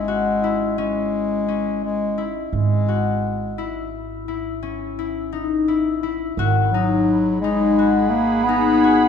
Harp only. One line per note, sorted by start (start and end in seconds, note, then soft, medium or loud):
0.00 0.78 C#4 medium
0.00 0.43 E4 medium
0.08 2.52 F#4 medium
0.44 2.17 E4 medium
0.78 1.48 C#4 medium
1.48 4.38 C#4 medium
2.18 3.58 E4 medium
2.88 5.32 F#4 medium
3.58 4.28 E4 medium
4.28 4.98 E4 medium
4.63 7.52 C#4 medium
4.99 5.39 E4 medium
5.33 5.74 D#4 medium
5.68 6.03 E4 medium
6.03 6.80 E4 medium
6.39 7.78 F#4 medium
6.74 7.44 D#4 medium
7.44 8.48 D#4 medium
7.79 8.83 F#4 medium
8.49 9.08 D#4 medium
8.84 9.08 F#4 medium